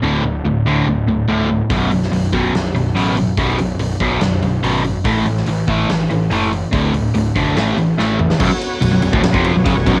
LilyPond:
<<
  \new Staff \with { instrumentName = "Tonewheel organ" } { \time 4/4 \key a \lydian \tempo 4 = 144 r1 | r1 | r1 | r1 |
r1 | <b fis' cis''>1 | }
  \new Staff \with { instrumentName = "Distorted electric guitar" } { \clef bass \time 4/4 \key a \lydian <d, a, d>8 <d, a,>8 <d, a,>8 <d, a, d>8 <d, a,>8 <d, a,>8 <d, a, d>8 <d, a,>8 | <b,, fis, b,>8 <b,, fis,>8 <b,, fis,>8 <b,, fis, b,>8 <b,, fis,>8 <b,, fis,>8 <b,, fis, b,>8 <b,, fis,>8 | <b,, fis, b,>8 <b,, fis,>8 <b,, fis,>8 <b,, fis, b,>8 <b,, fis,>8 <b,, fis,>8 <b,, fis, b,>8 <b,, fis,>8 | <a, e a>8 <a, e>8 <a, e>8 <a, e a>8 <a, e>8 <a, e>8 <a, e a>8 <a, e>8 |
<d, a, d>8 <d, a,>8 <d, a,>8 <d, a, d>8 <a, e a>8 <a, e>8 <a, e a>8 <a, e>8 | <b,, fis,>16 r8. <b,, fis,>16 <b,, fis,>16 <b,, fis,>16 <d, a,>16 <b,, fis,>16 <eis, c eis>8 <b,, fis,>16 <fis, cis>16 <b,, fis,>16 <b,, fis,>16 r16 | }
  \new Staff \with { instrumentName = "Overdriven electric guitar" } { \clef bass \time 4/4 \key a \lydian <d, a, d>8 <d, a,>8 <d, a,>8 <d, a, d>8 <d, a,>8 <d, a,>8 <d, a, d>8 <d, a,>8 | <b,, fis, b,>8 <b,, fis,>8 <b,, fis,>8 <b,, fis, b,>8 <b,, fis,>8 <b,, fis,>8 <b,, fis, b,>8 <b,, fis,>8 | <b,, fis, b,>8 <b,, fis,>8 <b,, fis,>8 <b,, fis, b,>8 <b,, fis,>8 <b,, fis,>8 <b,, fis, b,>8 <b,, fis,>8 | <a, e a>8 <a, e>8 <a, e>8 <a, e a>8 <a, e>8 <a, e>8 <a, e a>8 <a, e>8 |
<d, a, d>8 <d, a,>8 <d, a,>8 <d, a, d>8 <a, e a>8 <a, e>8 <a, e a>8 <a, e>8 | <b,, fis,>16 r8. <b,, fis,>16 <b,, fis,>16 <b,, fis,>16 <d, a,>16 <b,, fis,>16 <eis, c eis>8 <b,, fis,>16 <fis, cis>16 <b,, fis,>16 <b,, fis,>16 r16 | }
  \new Staff \with { instrumentName = "Picked electric bass" } { \clef bass \time 4/4 \key a \lydian d,,8 d,,8 d,,8 d,,8 d,,8 d,,8 cis,,4 | b,,,8 b,,,8 b,,,8 b,,,8 b,,,8 b,,,8 a,,4 | b,,,8 b,,,8 b,,,8 b,,,8 b,,,8 b,,,8 gis,,4 | a,,8 a,,8 a,,8 a,,8 a,,8 a,,8 fis,,4 |
d,,8 d,,8 d,,8 b,,,8 a,,8 a,,8 a,,4 | b,,,16 r8. b,,,16 b,,,16 b,,,16 d,,16 b,,,16 eis,,8 b,,,16 fis,,16 b,,,16 b,,,16 r16 | }
  \new DrumStaff \with { instrumentName = "Drums" } \drummode { \time 4/4 r4 r4 r4 r4 | <hho bd>8 hho16 sn16 hho8 bd8 <hho sn>8 hho8 hho8 hho8 | <hho bd>8 hho8 hho8 <hho bd>8 <hho sn>8 hho8 hho8 hho8 | <hho bd>8 hho16 sn16 hho8 <hho bd>8 <hho sn>8 hho8 hho8 hho8 |
<hho bd>8 hho8 hho8 <hho bd>8 <hho sn>8 hho8 sn8 toml16 sn16 | <cymc bd>8 cymr8 cymr8 cymr16 bd16 <cymr sn>16 bd16 cymr8 <bd cymr>8 <bd cymr sn>8 | }
>>